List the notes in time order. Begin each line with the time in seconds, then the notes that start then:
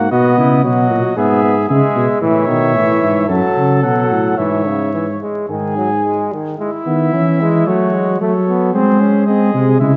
Already playing: G#2 A#3 F#4 F#5
0.12 B2 B3 F#4 D#5
0.38 C#3 E4
0.64 B2 F#3 F#4 D#5
0.90 A#2
1.17 G#2 B3 G#4 E5
1.44 B3
1.69 C#3 G#3 G#4 E5
1.96 B2
2.21 A2 E3 C#5 E5
2.48 B2 D#3
2.74 A2 E3
3.02 G#2
3.28 F#2 F#3 A4 A5
3.56 C#3
3.83 B2 F#3 F#5
4.11 A2
4.38 G#2 E3 C#5 E5
4.67 C#3
4.94 E3
5.22 G#3
5.50 G#2 D#3 G#4 G#5
5.78 F#3
6.04 G#3
6.32 D#3
6.59 G#3 E4 E5
6.86 D#3 B3
7.13 E3 C#4
7.40 G#3
7.67 F#3 A3 F#4 C#5
7.94 G#3
8.20 F#3 A3 A4 C#5
8.48 B3
8.73 G#3 C4 G#4 C5
9.00 C#4
9.27 C4 G#4 D#5
9.54 C3 G#3
9.80 C#3 G#3 E4 E5